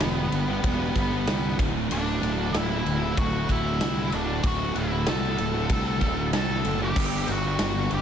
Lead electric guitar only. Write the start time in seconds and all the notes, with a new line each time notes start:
Already playing: B3 B4
1.92 D4 D5
2.55 E4 E5
3.18 F#4 F#5
3.51 E4 E5
4.14 D4 D5
4.45 F#4 F#5
4.77 E4 E5
5.09 A4 A5
6.34 A4 A5
6.83 G4 G5
7.31 F#4 F#5
7.93 G4 G5